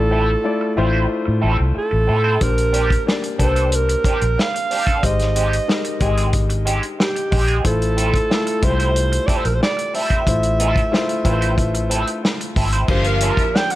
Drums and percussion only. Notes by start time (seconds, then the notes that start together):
2.41 kick, closed hi-hat
2.58 closed hi-hat
2.74 closed hi-hat
2.90 kick, closed hi-hat
3.08 snare
3.23 closed hi-hat
3.39 kick, closed hi-hat
3.56 closed hi-hat
3.72 closed hi-hat
3.89 closed hi-hat
4.04 kick, closed hi-hat
4.21 closed hi-hat
4.39 snare
4.56 closed hi-hat
4.71 open hi-hat
4.87 kick, closed hi-hat
5.03 kick, closed hi-hat
5.19 snare, closed hi-hat
5.36 closed hi-hat
5.53 closed hi-hat
5.69 snare
5.84 closed hi-hat
6.00 kick, closed hi-hat
6.17 closed hi-hat
6.33 kick, closed hi-hat
6.50 closed hi-hat
6.67 closed hi-hat
6.83 closed hi-hat
7.00 snare
7.16 closed hi-hat
7.32 kick, open hi-hat
7.48 closed hi-hat
7.64 kick, closed hi-hat
7.82 closed hi-hat
7.98 closed hi-hat
8.14 kick, closed hi-hat
8.31 snare
8.47 closed hi-hat
8.62 kick, closed hi-hat
8.79 closed hi-hat
8.96 closed hi-hat
9.12 closed hi-hat
9.28 kick, closed hi-hat
9.45 closed hi-hat
9.63 snare
9.79 closed hi-hat
9.94 open hi-hat
10.10 kick, closed hi-hat
10.27 kick, closed hi-hat
10.43 closed hi-hat
10.60 closed hi-hat
10.76 kick, closed hi-hat
10.94 snare
11.09 closed hi-hat
11.25 kick, closed hi-hat
11.42 closed hi-hat
11.58 kick, closed hi-hat
11.74 closed hi-hat
11.91 closed hi-hat
12.07 closed hi-hat
12.25 snare
12.41 closed hi-hat
12.56 kick, open hi-hat
12.72 closed hi-hat
12.88 kick, crash
13.04 closed hi-hat
13.20 closed hi-hat
13.37 kick, closed hi-hat
13.56 snare
13.70 closed hi-hat